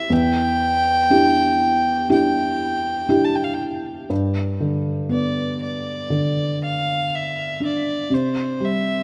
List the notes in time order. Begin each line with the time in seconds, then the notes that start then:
Already playing: C4 E4 G4 E5
0.10 E2 G5
1.10 D4 E4 G4
2.09 D4 E4 G4 G5
3.09 D4 E4 G4
3.25 A5
3.35 G5
3.44 F5
3.54 G5
4.10 G2
4.61 D3
5.09 B3 D5
5.63 D5
6.10 D3
6.64 F5
7.15 E5
7.60 D4
7.65 D5
8.10 C3 C5
8.60 G3
8.65 E5